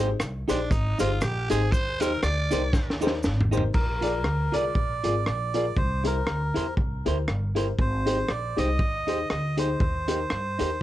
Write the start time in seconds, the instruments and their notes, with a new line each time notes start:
Already playing: upright bass G#1
0.00 upright piano G#4 C5
0.20 upright bass C2, cross-stick, closed hi-hat, cabasa
0.48 upright bass A#1, tenor saxophone D4, clean electric guitar D#4 G4 C5, upright piano D#4 G4 G#4 C5, closed hi-hat, cabasa
0.70 upright bass G#1, tenor saxophone D#4, muted clean electric guitar stroke, kick, closed hi-hat, cabasa
0.99 upright bass G1, clean electric guitar D#4 G4 C5, upright piano D#4 G4 G#4 C5, tenor saxophone F4, closed hi-hat, cabasa
1.21 upright bass A#1, tenor saxophone G4, cross-stick, closed hi-hat, cabasa
1.49 upright bass G#1, clean electric guitar D#4 G4 C5, upright piano D#4 G4 G#4 C5, tenor saxophone G#4, closed hi-hat, cabasa
1.72 upright bass D#2, tenor saxophone C5, kick, closed hi-hat, cabasa
2.00 clean electric guitar D#4 G4 C5, upright piano D#4 G4 A#4 C5, tenor saxophone A#4, closed hi-hat, cabasa
2.22 upright bass D2, tenor saxophone D5, cross-stick, closed hi-hat, cabasa
2.51 upright bass C2, clean electric guitar D#4 G4 C5, upright piano D#4 G4 A#4 C5, closed hi-hat, cabasa
2.73 upright bass D#2, muted clean electric guitar stroke, kick, snare, cabasa
2.90 snare
3.01 clean electric guitar D#4 G4 C5, upright piano D#4 G4 A#4 C5, cabasa
3.07 snare
3.23 upright bass G#1, snare, cabasa
3.40 floor tom
3.51 clean electric guitar D#4 G4 C5, upright piano D#4 G4 A#4 C5, cabasa
3.57 floor tom
3.74 upright bass A#1, melodica A#4, kick, crash
4.01 clean electric guitar F4 G#4 D5, upright piano F4 G#4 A#4 D5, closed hi-hat
4.24 upright bass D2, cross-stick
4.52 upright bass C2, clean electric guitar F4 G#4 D5, upright piano F4 G#4 A#4 D5, melodica D5, closed hi-hat
4.75 upright bass A#1, kick
5.04 upright bass G#1, clean electric guitar F4 G#4 D5, upright piano F4 G#4 A#4 D5, closed hi-hat
5.26 upright bass A#1, melodica D5, cross-stick
5.54 upright piano F4 G#4 A#4 D5, clean electric guitar F4 G#4 D5, closed hi-hat
5.77 upright bass C2, melodica C5, kick
6.04 clean electric guitar E4 A#4 C5, upright piano E4 G4 A#4 C5, melodica A#4, closed hi-hat
6.27 upright bass D2, cross-stick
6.54 upright bass E2, clean electric guitar E4 A#4 C5, upright piano E4 G4 A#4 C5, closed hi-hat
6.77 upright bass C2, kick
7.05 upright bass D2, upright piano E4 G4 A#4 C5, clean electric guitar E4 A#4 C5, closed hi-hat
7.28 upright bass G1, cross-stick
7.55 clean electric guitar E4 A#4 C5, upright piano E4 G4 A#4 C5, closed hi-hat
7.79 upright bass G#1, melodica C5, kick
8.06 clean electric guitar D#4 G4 C5, upright piano D#4 G4 G#4 C5, closed hi-hat
8.29 upright bass A#1, melodica D5, cross-stick
8.56 upright bass C2, upright piano D#4 G4 G#4 C5, clean electric guitar D#4 G4 C5, melodica D#5, closed hi-hat
8.79 kick
9.07 clean electric guitar D#4 G4 C5, upright piano D#4 G4 G#4 C5, closed hi-hat
9.30 upright bass D2, melodica D#5, cross-stick
9.57 clean electric guitar D#4 G4 C5, upright piano D#4 G4 G#4 C5, melodica C5, closed hi-hat
9.80 upright bass D#2, kick
10.08 upright piano D#4 G4 A#4 C5, clean electric guitar D#4 G4 C5, closed hi-hat
10.30 upright bass G2, cross-stick
10.59 upright bass D#2, clean electric guitar D#4 G4 C5, upright piano D#4 G4 A#4 C5, closed hi-hat